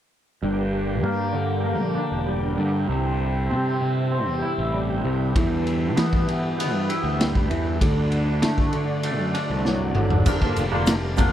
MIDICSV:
0, 0, Header, 1, 6, 480
1, 0, Start_track
1, 0, Tempo, 614754
1, 334, Time_signature, 4, 2, 24, 8
1, 8842, End_track
2, 0, Start_track
2, 0, Title_t, "Tonewheel organ"
2, 0, Program_c, 0, 16
2, 333, Note_on_c, 0, 58, 42
2, 333, Note_on_c, 0, 67, 53
2, 339, Note_on_c, 0, 55, 48
2, 343, Note_on_c, 0, 62, 43
2, 2239, Note_off_c, 0, 58, 0
2, 2245, Note_off_c, 0, 62, 0
2, 2252, Note_on_c, 0, 64, 47
2, 2261, Note_on_c, 0, 60, 46
2, 4161, Note_off_c, 0, 64, 0
2, 4165, Note_off_c, 0, 60, 0
2, 4190, Note_on_c, 0, 64, 50
2, 4192, Note_on_c, 0, 59, 51
2, 6074, Note_off_c, 0, 67, 0
2, 6078, Note_off_c, 0, 55, 0
2, 6090, Note_off_c, 0, 64, 0
2, 6091, Note_off_c, 0, 59, 0
2, 6091, Note_on_c, 0, 66, 55
2, 6093, Note_on_c, 0, 57, 47
2, 6095, Note_on_c, 0, 62, 45
2, 6100, Note_on_c, 0, 50, 50
2, 7993, Note_off_c, 0, 66, 0
2, 7994, Note_off_c, 0, 57, 0
2, 7995, Note_off_c, 0, 62, 0
2, 7998, Note_off_c, 0, 50, 0
2, 8019, Note_on_c, 0, 55, 61
2, 8021, Note_on_c, 0, 62, 52
2, 8022, Note_on_c, 0, 65, 62
2, 8023, Note_on_c, 0, 58, 51
2, 8842, Note_off_c, 0, 55, 0
2, 8842, Note_off_c, 0, 58, 0
2, 8842, Note_off_c, 0, 62, 0
2, 8842, Note_off_c, 0, 65, 0
2, 8842, End_track
3, 0, Start_track
3, 0, Title_t, "Clean electric guitar"
3, 0, Program_c, 1, 27
3, 332, Note_on_c, 1, 43, 62
3, 807, Note_on_c, 1, 58, 55
3, 1036, Note_on_c, 1, 50, 64
3, 1269, Note_off_c, 1, 58, 0
3, 1279, Note_on_c, 1, 58, 60
3, 1524, Note_on_c, 1, 62, 63
3, 1536, Note_off_c, 1, 43, 0
3, 1765, Note_on_c, 1, 55, 56
3, 1995, Note_off_c, 1, 50, 0
3, 2004, Note_on_c, 1, 50, 58
3, 2243, Note_off_c, 1, 50, 0
3, 2246, Note_on_c, 1, 48, 60
3, 2250, Note_off_c, 1, 58, 0
3, 2253, Note_off_c, 1, 62, 0
3, 2730, Note_on_c, 1, 60, 56
3, 2961, Note_off_c, 1, 48, 0
3, 2971, Note_on_c, 1, 48, 60
3, 3205, Note_off_c, 1, 60, 0
3, 3215, Note_on_c, 1, 60, 56
3, 3453, Note_on_c, 1, 64, 66
3, 3694, Note_off_c, 1, 55, 0
3, 3697, Note_on_c, 1, 55, 61
3, 3926, Note_off_c, 1, 48, 0
3, 3936, Note_on_c, 1, 48, 60
3, 4175, Note_off_c, 1, 48, 0
3, 4178, Note_on_c, 1, 52, 63
3, 4180, Note_off_c, 1, 60, 0
3, 4180, Note_off_c, 1, 64, 0
3, 4181, Note_off_c, 1, 55, 0
3, 4657, Note_on_c, 1, 59, 67
3, 4885, Note_off_c, 1, 52, 0
3, 4894, Note_on_c, 1, 52, 57
3, 5132, Note_off_c, 1, 59, 0
3, 5141, Note_on_c, 1, 59, 61
3, 5379, Note_on_c, 1, 64, 59
3, 5623, Note_on_c, 1, 55, 54
3, 5849, Note_off_c, 1, 52, 0
3, 5858, Note_on_c, 1, 52, 61
3, 6097, Note_off_c, 1, 52, 0
3, 6100, Note_on_c, 1, 50, 63
3, 6102, Note_off_c, 1, 64, 0
3, 6104, Note_off_c, 1, 55, 0
3, 6104, Note_off_c, 1, 59, 0
3, 6581, Note_on_c, 1, 57, 58
3, 6811, Note_off_c, 1, 50, 0
3, 6820, Note_on_c, 1, 50, 61
3, 7047, Note_off_c, 1, 57, 0
3, 7057, Note_on_c, 1, 57, 54
3, 7294, Note_on_c, 1, 62, 68
3, 7534, Note_on_c, 1, 54, 55
3, 7764, Note_off_c, 1, 50, 0
3, 7773, Note_on_c, 1, 50, 60
3, 7995, Note_off_c, 1, 50, 0
3, 8005, Note_on_c, 1, 50, 90
3, 8008, Note_off_c, 1, 62, 0
3, 8010, Note_off_c, 1, 54, 0
3, 8012, Note_off_c, 1, 57, 0
3, 8013, Note_on_c, 1, 53, 81
3, 8015, Note_on_c, 1, 58, 82
3, 8018, Note_on_c, 1, 62, 91
3, 8117, Note_off_c, 1, 58, 0
3, 8119, Note_off_c, 1, 62, 0
3, 8123, Note_off_c, 1, 53, 0
3, 8124, Note_off_c, 1, 50, 0
3, 8127, Note_on_c, 1, 58, 62
3, 8129, Note_on_c, 1, 62, 68
3, 8132, Note_on_c, 1, 53, 63
3, 8133, Note_on_c, 1, 50, 54
3, 8288, Note_off_c, 1, 58, 0
3, 8289, Note_off_c, 1, 62, 0
3, 8290, Note_off_c, 1, 53, 0
3, 8291, Note_off_c, 1, 50, 0
3, 8368, Note_on_c, 1, 62, 81
3, 8369, Note_on_c, 1, 58, 82
3, 8375, Note_on_c, 1, 50, 70
3, 8376, Note_on_c, 1, 53, 61
3, 8527, Note_off_c, 1, 62, 0
3, 8528, Note_off_c, 1, 58, 0
3, 8531, Note_off_c, 1, 50, 0
3, 8531, Note_off_c, 1, 53, 0
3, 8723, Note_on_c, 1, 50, 82
3, 8727, Note_on_c, 1, 58, 87
3, 8729, Note_on_c, 1, 53, 92
3, 8732, Note_on_c, 1, 62, 85
3, 8842, Note_off_c, 1, 50, 0
3, 8842, Note_off_c, 1, 53, 0
3, 8842, Note_off_c, 1, 58, 0
3, 8842, Note_off_c, 1, 62, 0
3, 8842, End_track
4, 0, Start_track
4, 0, Title_t, "Tanpura"
4, 0, Program_c, 2, 104
4, 332, Note_on_c, 2, 50, 51
4, 825, Note_on_c, 2, 55, 50
4, 1311, Note_off_c, 2, 55, 0
4, 1311, Note_on_c, 2, 55, 51
4, 1796, Note_on_c, 2, 43, 48
4, 2274, Note_off_c, 2, 50, 0
4, 2277, Note_on_c, 2, 50, 54
4, 2782, Note_off_c, 2, 55, 0
4, 2782, Note_on_c, 2, 55, 49
4, 3272, Note_off_c, 2, 55, 0
4, 3272, Note_on_c, 2, 55, 55
4, 3739, Note_off_c, 2, 43, 0
4, 3742, Note_on_c, 2, 43, 49
4, 4233, Note_off_c, 2, 50, 0
4, 4236, Note_on_c, 2, 50, 56
4, 4724, Note_off_c, 2, 55, 0
4, 4724, Note_on_c, 2, 55, 51
4, 5692, Note_off_c, 2, 43, 0
4, 5695, Note_on_c, 2, 43, 46
4, 6193, Note_off_c, 2, 50, 0
4, 6196, Note_on_c, 2, 50, 57
4, 7625, Note_off_c, 2, 43, 0
4, 7629, Note_on_c, 2, 43, 58
4, 8008, Note_off_c, 2, 50, 0
4, 8012, Note_on_c, 2, 50, 60
4, 8504, Note_off_c, 2, 55, 0
4, 8507, Note_on_c, 2, 55, 57
4, 8842, Note_off_c, 2, 43, 0
4, 8842, Note_off_c, 2, 50, 0
4, 8842, Note_off_c, 2, 55, 0
4, 8842, End_track
5, 0, Start_track
5, 0, Title_t, "Picked electric bass"
5, 0, Program_c, 3, 34
5, 333, Note_on_c, 3, 31, 83
5, 808, Note_off_c, 3, 31, 0
5, 808, Note_on_c, 3, 43, 71
5, 1411, Note_off_c, 3, 43, 0
5, 1411, Note_on_c, 3, 34, 59
5, 1525, Note_off_c, 3, 34, 0
5, 1654, Note_on_c, 3, 28, 66
5, 1989, Note_off_c, 3, 28, 0
5, 2014, Note_on_c, 3, 43, 78
5, 2239, Note_off_c, 3, 43, 0
5, 2253, Note_on_c, 3, 36, 72
5, 2739, Note_on_c, 3, 48, 76
5, 2751, Note_off_c, 3, 36, 0
5, 3336, Note_off_c, 3, 48, 0
5, 3336, Note_on_c, 3, 40, 65
5, 3450, Note_off_c, 3, 40, 0
5, 3578, Note_on_c, 3, 33, 68
5, 3913, Note_off_c, 3, 33, 0
5, 3940, Note_on_c, 3, 36, 83
5, 4164, Note_off_c, 3, 36, 0
5, 4181, Note_on_c, 3, 40, 84
5, 4656, Note_off_c, 3, 40, 0
5, 4656, Note_on_c, 3, 52, 78
5, 5253, Note_off_c, 3, 52, 0
5, 5253, Note_on_c, 3, 43, 69
5, 5370, Note_off_c, 3, 43, 0
5, 5494, Note_on_c, 3, 38, 77
5, 5832, Note_off_c, 3, 38, 0
5, 5858, Note_on_c, 3, 40, 80
5, 6083, Note_off_c, 3, 40, 0
5, 6096, Note_on_c, 3, 38, 89
5, 6576, Note_off_c, 3, 38, 0
5, 6576, Note_on_c, 3, 50, 71
5, 7177, Note_off_c, 3, 50, 0
5, 7177, Note_on_c, 3, 42, 73
5, 7290, Note_off_c, 3, 42, 0
5, 7418, Note_on_c, 3, 36, 64
5, 7751, Note_off_c, 3, 36, 0
5, 7772, Note_on_c, 3, 32, 82
5, 7996, Note_off_c, 3, 32, 0
5, 8014, Note_on_c, 3, 31, 105
5, 8127, Note_off_c, 3, 31, 0
5, 8253, Note_on_c, 3, 29, 82
5, 8842, Note_off_c, 3, 29, 0
5, 8842, End_track
6, 0, Start_track
6, 0, Title_t, "Drums"
6, 4182, Note_on_c, 9, 51, 63
6, 4183, Note_on_c, 9, 36, 83
6, 4261, Note_off_c, 9, 36, 0
6, 4261, Note_off_c, 9, 51, 0
6, 4424, Note_on_c, 9, 51, 49
6, 4502, Note_off_c, 9, 51, 0
6, 4663, Note_on_c, 9, 51, 78
6, 4666, Note_on_c, 9, 38, 92
6, 4741, Note_off_c, 9, 51, 0
6, 4744, Note_off_c, 9, 38, 0
6, 4784, Note_on_c, 9, 36, 69
6, 4862, Note_off_c, 9, 36, 0
6, 4907, Note_on_c, 9, 51, 54
6, 4985, Note_off_c, 9, 51, 0
6, 5152, Note_on_c, 9, 51, 71
6, 5230, Note_off_c, 9, 51, 0
6, 5385, Note_on_c, 9, 51, 57
6, 5463, Note_off_c, 9, 51, 0
6, 5626, Note_on_c, 9, 51, 71
6, 5629, Note_on_c, 9, 38, 87
6, 5704, Note_off_c, 9, 51, 0
6, 5707, Note_off_c, 9, 38, 0
6, 5741, Note_on_c, 9, 36, 69
6, 5820, Note_off_c, 9, 36, 0
6, 5861, Note_on_c, 9, 51, 49
6, 5939, Note_off_c, 9, 51, 0
6, 6100, Note_on_c, 9, 36, 81
6, 6101, Note_on_c, 9, 51, 72
6, 6178, Note_off_c, 9, 36, 0
6, 6179, Note_off_c, 9, 51, 0
6, 6337, Note_on_c, 9, 51, 50
6, 6415, Note_off_c, 9, 51, 0
6, 6578, Note_on_c, 9, 51, 80
6, 6581, Note_on_c, 9, 38, 89
6, 6656, Note_off_c, 9, 51, 0
6, 6659, Note_off_c, 9, 38, 0
6, 6698, Note_on_c, 9, 36, 68
6, 6776, Note_off_c, 9, 36, 0
6, 6813, Note_on_c, 9, 51, 56
6, 6892, Note_off_c, 9, 51, 0
6, 7052, Note_on_c, 9, 51, 67
6, 7130, Note_off_c, 9, 51, 0
6, 7297, Note_on_c, 9, 51, 54
6, 7375, Note_off_c, 9, 51, 0
6, 7537, Note_on_c, 9, 38, 45
6, 7615, Note_off_c, 9, 38, 0
6, 7767, Note_on_c, 9, 45, 62
6, 7845, Note_off_c, 9, 45, 0
6, 7889, Note_on_c, 9, 43, 66
6, 7967, Note_off_c, 9, 43, 0
6, 8009, Note_on_c, 9, 49, 90
6, 8011, Note_on_c, 9, 82, 70
6, 8013, Note_on_c, 9, 36, 92
6, 8087, Note_off_c, 9, 49, 0
6, 8089, Note_off_c, 9, 82, 0
6, 8091, Note_off_c, 9, 36, 0
6, 8133, Note_on_c, 9, 36, 78
6, 8211, Note_off_c, 9, 36, 0
6, 8248, Note_on_c, 9, 51, 64
6, 8252, Note_on_c, 9, 82, 53
6, 8326, Note_off_c, 9, 51, 0
6, 8330, Note_off_c, 9, 82, 0
6, 8483, Note_on_c, 9, 82, 79
6, 8488, Note_on_c, 9, 51, 95
6, 8491, Note_on_c, 9, 38, 102
6, 8561, Note_off_c, 9, 82, 0
6, 8566, Note_off_c, 9, 51, 0
6, 8569, Note_off_c, 9, 38, 0
6, 8721, Note_on_c, 9, 82, 68
6, 8732, Note_on_c, 9, 36, 79
6, 8734, Note_on_c, 9, 51, 70
6, 8799, Note_off_c, 9, 82, 0
6, 8810, Note_off_c, 9, 36, 0
6, 8812, Note_off_c, 9, 51, 0
6, 8842, End_track
0, 0, End_of_file